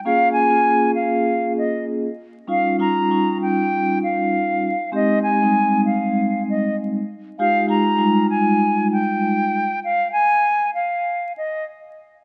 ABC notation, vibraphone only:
X:1
M:4/4
L:1/16
Q:"Swing 16ths" 1/4=98
K:Fm
V:1 name="Vibraphone"
[B,DFA]3 [B,DFA]8- [B,DFA]2 z3 | [G,DEF]2 [G,DEF]2 [G,DEF]8- [G,DEF]2 z2 | [A,CEG]3 [G,A,CE]8- [G,A,CE]2 z3 | [A,EFG]2 [A,EFG]2 [G,A,EF]8- [G,A,EF]2 z2 |
z16 |]